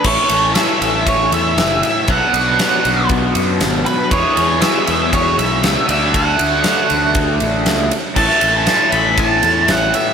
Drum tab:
CC |x---------------|----------------|----------------|----------------|
RD |--x-x-x-x-x-x-x-|x-x-x-x-x-x-x-x-|x-x-x-x-x-x-x-x-|x-x-x-x-x-x-x-x-|
SD |----o-------o---|----o-------o---|----o-------o---|----o-------o---|
BD |o-------o-------|o-------o-------|o-------o-------|o-------o-------|

CC |x---------------|
RD |--x-x-x-x-x-x-x-|
SD |-o--o-------o---|
BD |o-------o-------|